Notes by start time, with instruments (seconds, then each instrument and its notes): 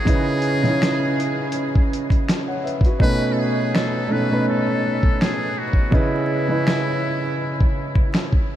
Already playing: muted trumpet G#4
0.05 felt piano C#3 C#4 D#4 E4 B4, kick, closed hi-hat
0.42 closed hi-hat
0.63 felt piano C#3 C#4 D#4 E4 C#5, closed hi-hat
0.82 finger snap, snare, closed hi-hat
1.20 closed hi-hat
1.52 closed hi-hat
1.75 kick
1.93 closed hi-hat
2.10 kick, closed hi-hat
2.29 finger snap, snare, closed hi-hat
2.48 felt piano C#5 F#5
2.64 felt piano B4 E5, closed hi-hat
2.81 kick, closed hi-hat
2.85 felt piano F#4 B4
2.99 felt piano B2 A3 C#4 D#4 B4, muted trumpet B4, kick
3.32 muted trumpet A4
3.39 muted trumpet G#4
3.75 muted trumpet A4, finger snap, snare
4.08 felt piano B2 A3 C#4 D#4 C#5
4.12 muted trumpet B4
4.30 felt piano B2 A3 C#4 D#4 B4
4.49 muted trumpet A4
5.03 kick
5.21 muted trumpet G#4, finger snap, snare
5.58 muted trumpet F#4
5.73 kick
5.91 felt piano C#3 C#4 E4 B4 D#5, muted trumpet E4, kick
6.48 felt piano C#3 C#4 E4 D#5
6.52 felt piano B4
6.67 finger snap, snare
7.61 kick
7.95 kick
8.14 finger snap, snare
8.33 kick